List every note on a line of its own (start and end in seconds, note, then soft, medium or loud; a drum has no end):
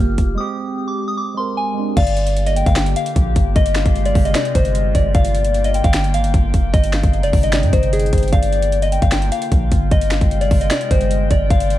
0.00 0.17 G1 loud
0.00 0.40 A#3 medium
0.00 0.40 F4 medium
0.00 0.40 G4 loud
0.00 0.34 F6 medium
0.18 0.37 F1 loud
0.18 kick medium
0.18 closed hi-hat medium
0.35 1.01 G#3 loud
0.35 1.02 C4 medium
0.35 0.84 D#6 loud
0.40 1.04 G4 loud
0.88 1.06 D6 medium
1.08 1.17 D#6 medium
1.17 1.35 D6 medium
1.34 1.68 G#3 medium
1.34 1.69 C4 medium
1.34 1.55 C6 medium
1.40 1.71 A#4 medium
1.57 1.95 G#5 medium
1.74 1.92 G#3 medium
1.74 1.93 C4 medium
1.79 1.94 D4 medium
1.97 2.64 G1 loud
1.97 3.54 D3 medium
1.97 3.54 A#3 medium
1.97 6.70 F4 medium
1.97 5.12 G4 loud
1.97 2.53 D5 loud
1.97 2.43 F5 loud
1.97 kick loud
1.97 closed hi-hat medium
1.97 crash loud
2.07 closed hi-hat medium
2.17 closed hi-hat medium
2.27 closed hi-hat medium
2.37 closed hi-hat medium
2.46 2.65 D#5 medium
2.46 closed hi-hat medium
2.56 2.75 G5 medium
2.56 closed hi-hat medium
2.66 2.95 G1 loud
2.66 2.75 F5 medium
2.66 kick loud
2.66 closed hi-hat medium
2.76 2.94 G5 medium
2.76 finger snap medium
2.76 snare loud
2.76 closed hi-hat medium
2.86 closed hi-hat medium
2.96 3.52 F5 medium
2.96 closed hi-hat medium
3.06 closed hi-hat medium
3.16 3.35 A#1 loud
3.16 kick loud
3.16 closed hi-hat medium
3.36 3.55 G1 loud
3.36 kick medium
3.36 closed hi-hat medium
3.56 3.84 G1 loud
3.56 5.13 C3 medium
3.56 5.13 G#3 medium
3.56 4.03 D#5 loud
3.56 kick loud
3.56 closed hi-hat medium
3.66 closed hi-hat medium
3.75 4.32 F5 medium
3.75 finger snap medium
3.75 snare medium
3.75 closed hi-hat medium
3.86 4.14 G1 loud
3.86 kick loud
3.86 closed hi-hat medium
3.96 closed hi-hat medium
4.05 4.24 D5 medium
4.05 closed hi-hat medium
4.15 4.34 G1 loud
4.15 kick loud
4.15 open hi-hat medium
4.25 4.34 D#5 medium
4.25 closed hi-hat medium
4.34 4.53 D5 medium
4.34 5.11 D#5 loud
4.34 finger snap medium
4.34 snare loud
4.34 closed hi-hat loud
4.45 closed hi-hat medium
4.55 4.93 G1 loud
4.55 4.93 C5 medium
4.55 kick loud
4.55 closed hi-hat medium
4.65 closed hi-hat medium
4.75 closed hi-hat medium
4.95 5.14 G1 loud
4.95 5.13 D5 medium
4.95 kick medium
4.95 closed hi-hat medium
5.15 5.81 G1 loud
5.15 6.72 D3 medium
5.15 6.72 A#3 medium
5.15 5.71 D5 loud
5.15 5.61 F5 medium
5.15 9.88 G5 loud
5.15 kick loud
5.15 closed hi-hat medium
5.25 closed hi-hat medium
5.35 closed hi-hat medium
5.45 closed hi-hat medium
5.54 closed hi-hat medium
5.64 5.83 D#5 medium
5.64 closed hi-hat medium
5.74 5.93 G5 medium
5.74 closed hi-hat medium
5.84 6.16 G1 loud
5.84 5.93 F5 medium
5.84 kick loud
5.84 closed hi-hat medium
5.93 6.12 G5 medium
5.93 finger snap medium
5.93 snare loud
5.93 closed hi-hat medium
6.04 closed hi-hat medium
6.14 6.25 G#1 loud
6.14 6.70 F5 medium
6.14 closed hi-hat medium
6.24 6.33 G1 loud
6.24 closed hi-hat medium
6.34 6.53 G1 loud
6.34 kick loud
6.34 closed hi-hat medium
6.54 6.73 F1 loud
6.54 kick medium
6.54 closed hi-hat medium
6.73 7.02 G1 loud
6.73 8.31 C3 medium
6.73 8.31 G#3 medium
6.73 8.31 D#4 medium
6.73 7.20 D#5 loud
6.73 kick loud
6.73 closed hi-hat medium
6.84 closed hi-hat medium
6.93 7.50 F5 medium
6.93 finger snap medium
6.93 snare medium
6.93 closed hi-hat medium
7.03 7.25 G1 loud
7.03 kick loud
7.03 closed hi-hat medium
7.13 closed hi-hat soft
7.23 7.33 F1 loud
7.23 7.41 D5 medium
7.23 closed hi-hat medium
7.33 7.64 G1 loud
7.33 kick loud
7.33 open hi-hat medium
7.43 7.52 D#5 medium
7.43 closed hi-hat medium
7.52 7.71 D5 medium
7.52 8.09 D#5 medium
7.52 finger snap medium
7.52 snare loud
7.52 closed hi-hat loud
7.63 7.72 G2 loud
7.63 closed hi-hat medium
7.73 8.11 G1 loud
7.73 7.91 C5 medium
7.73 kick loud
7.73 closed hi-hat medium
7.83 closed hi-hat medium
7.93 8.30 G#4 medium
7.93 closed hi-hat medium
7.99 closed hi-hat medium
8.06 closed hi-hat soft
8.13 8.32 G1 loud
8.13 8.32 C5 medium
8.13 kick medium
8.13 closed hi-hat medium
8.18 closed hi-hat medium
8.23 closed hi-hat medium
8.28 closed hi-hat soft
8.32 8.99 G1 loud
8.32 9.90 D3 medium
8.32 9.90 A#3 medium
8.32 11.79 F4 medium
8.32 8.89 D5 loud
8.32 8.79 F5 medium
8.32 kick loud
8.32 closed hi-hat medium
8.43 closed hi-hat medium
8.53 closed hi-hat medium
8.62 closed hi-hat medium
8.72 closed hi-hat medium
8.82 9.00 D#5 medium
8.82 closed hi-hat medium
8.92 9.11 G5 medium
8.92 closed hi-hat medium
9.02 9.31 G1 loud
9.02 9.11 F5 medium
9.02 kick medium
9.02 closed hi-hat medium
9.11 9.30 G5 medium
9.11 finger snap medium
9.11 snare loud
9.11 closed hi-hat medium
9.22 closed hi-hat medium
9.32 9.88 F5 medium
9.32 closed hi-hat medium
9.42 closed hi-hat medium
9.52 9.71 A#1 loud
9.52 kick loud
9.52 closed hi-hat medium
9.72 9.91 G1 loud
9.72 kick medium
9.72 closed hi-hat medium
9.91 10.20 G1 loud
9.91 11.49 C3 medium
9.91 11.49 G#3 medium
9.91 10.38 D#5 loud
9.91 11.79 G5 medium
9.91 kick loud
9.91 closed hi-hat medium
10.01 closed hi-hat medium
10.11 10.67 F5 medium
10.11 finger snap medium
10.11 snare medium
10.11 closed hi-hat medium
10.21 10.50 G1 loud
10.21 kick loud
10.21 closed hi-hat medium
10.31 closed hi-hat medium
10.41 10.59 D5 medium
10.41 closed hi-hat medium
10.51 10.70 G1 loud
10.51 kick loud
10.51 open hi-hat medium
10.61 10.70 D#5 medium
10.61 closed hi-hat medium
10.70 10.89 D5 medium
10.70 11.46 D#5 loud
10.70 finger snap medium
10.70 snare loud
10.70 closed hi-hat loud
10.81 closed hi-hat medium
10.91 11.29 G1 loud
10.91 11.28 C5 medium
10.91 kick medium
10.91 closed hi-hat medium
11.01 closed hi-hat medium
11.11 closed hi-hat medium
11.31 11.50 G1 loud
11.31 11.49 D5 medium
11.31 kick medium
11.31 closed hi-hat medium
11.50 11.79 G1 loud
11.50 11.79 D3 medium
11.50 11.79 A#3 medium
11.50 11.79 D5 loud
11.50 11.79 F5 medium
11.50 kick loud
11.50 closed hi-hat medium
11.60 closed hi-hat medium
11.70 closed hi-hat medium